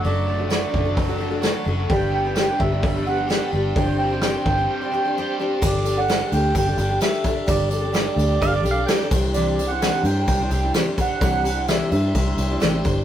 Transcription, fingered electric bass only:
\new Staff \with { instrumentName = "Fingered electric bass" } { \clef bass \time 4/4 \key g \major \tempo 4 = 129 fis,,4. fis,,2 fis,,8 | g,,4. g,,2 g,,8 | g,,4. g,,8 r2 | g,,4. d,8 g,,8 g,,8 r4 |
g,,4. d,8 g,,8 b,,8 r8 c,8~ | c,4. g,8 c,8 c,8 r4 | c,4. g,8 c,8 c,8 a,,8 g,,8 | }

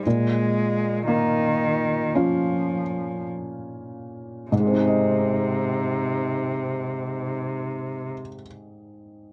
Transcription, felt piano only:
\new Staff \with { instrumentName = "Felt piano" } { \time 4/4 \key aes \major \tempo 4 = 50 bes,4 bes4 <des' f'>2 | <aes, aes c' ees' aes' ees''>1 | }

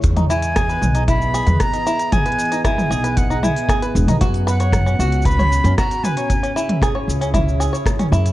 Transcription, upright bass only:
\new Staff \with { instrumentName = "Upright bass" } { \clef bass \time 4/4 \key e \lydian \tempo 4 = 115 e,4. b,,4~ b,,16 e,16 r4 | r4. b,,4~ b,,16 r8. e,,16 b,,16 | fis,4. cis,4~ cis,16 fis,16 r4 | r4. cis,4~ cis,16 r8. fis,16 r16 | }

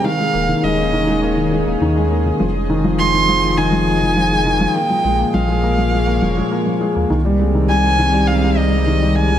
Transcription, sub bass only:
\new Staff \with { instrumentName = "Sub bass" } { \clef bass \time 4/4 \key f \minor \tempo 4 = 102 r8 ees,,16 r16 ees,,4.~ ees,,16 ees,,16 ees,8. r16 | f,,2.~ f,,8. r16 | r8 bes,,16 r16 bes,,4. f,,16 r4 ees,16 | c,2.~ c,8. r16 | }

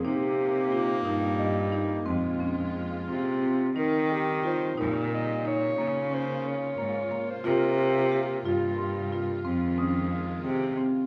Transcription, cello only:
\new Staff \with { instrumentName = "Cello" } { \clef bass \time 11/8 \key f \minor \tempo 4 = 90 c4. g,4. f,4. c4 | ees4. bes,4. des4. aes,8 r8 | c4. g,4. f,4. c8 r8 | }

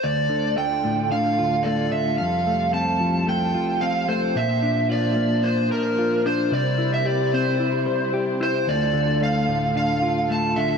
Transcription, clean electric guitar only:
\new Staff \with { instrumentName = "Clean electric guitar" } { \time 4/4 \key d \minor \tempo 4 = 111 d,8 d8 a8 a,8 d8 f'8 a8 d8 | f,8 a8 c'8 f8 a8 f'8 c'8 a8 | bes,8 d'8 f'8 bes8 d'8 bes'8 f'8 d'8 | c8 e'8 g'8 c'8 e'8 c''8 g'8 e'8 |
d,8 d8 a8 a,8 d8 f'8 a8 d8 | }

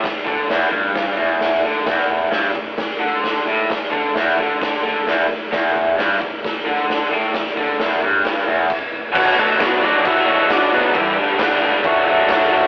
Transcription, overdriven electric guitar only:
\new Staff \with { instrumentName = "Overdriven electric guitar" } { \clef bass \time 4/4 \key e \minor \tempo 4 = 132 e,8 d8 e,8 g,4 e,4 d8 | e,4 g,8 e,8 r8 d4 a,8 | e,8 d8 e,8 d4 d8 e,8 e,8 | e,4 g,8 e,8 r8 d4 a,8 |
e,8 d8 e,8 g,4 e,8 r4 | <b, fis b d' fis'>8 <b, fis b d' fis'>8 <b, fis b d' fis'>8 <b, fis b d' fis'>8 <b, fis b d' fis'>8 <b, fis b d' fis'>8 <b, fis b d' fis'>8 <b, fis b d' fis'>8 | <g, d g b d' g'>8 <g, d g b d' g'>8 <g, d g b d' g'>8 <g, d g b d' g'>8 <fis a d' fis'>8 <fis a d' fis'>8 <fis a d' fis'>8 <fis a d' fis'>8 | }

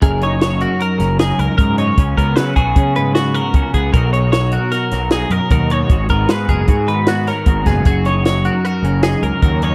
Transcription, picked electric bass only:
\new Staff \with { instrumentName = "Picked electric bass" } { \clef bass \time 5/4 \key fis \major \tempo 4 = 153 fis,,2 r8 fis,,4 cis,16 r16 gis,4 | cis,8 cis,8 cis8 b,,8 cis2 cis,16 r16 cis,8 | b,,2 r8 b,,4 fis,16 r16 dis,4 | gis,,8 gis,,8 gis,8 fis,,8 gis,2 gis,,8 fis,,8 |
fis,,2 r8 fis,,4 cis,16 r16 dis,4 | }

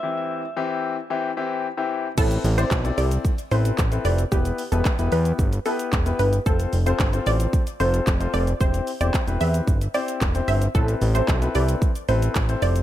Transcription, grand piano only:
\new Staff \with { instrumentName = "Grand piano" } { \time 4/4 \key a \minor \tempo 4 = 112 <e c' e' g'>8. r16 <e c' e' g'>8. r16 <e c' e' g'>16 r16 <e c' e' g'>8 r16 <e c' e' g'>8 r16 | <c' e' a' b'>8 r16 <c' e' a' d''>16 r16 <c' e' a' d''>4 r16 <c' e' a' b'>8 r16 <c' e' a' b'>8 r16 | <b e' g' b'>8 r16 <b e' g' b'>16 r16 <b e' g' b'>4 r16 <b e' g' b'>8 r16 <b e' g' b'>8 r16 | <c' f' a' c''>8 r16 <c' f' a' c''>16 r16 <c' f' a' c''>4 r16 <c' f' a' c''>8 r16 <c' f' a' c''>8 r16 |
<c' e' g' c''>8 r16 <c' e' g' c''>16 r16 <c' e' g' b'>4 r16 <c' e' g' c''>8 r16 <c' e' g' c''>8 r16 | <c' e' a' b'>8 r16 <c' e' a' c''>16 r16 <c' e' a' b'>4 r16 <c' e' a' b'>8 r16 <c' e' a' c''>8 r16 | }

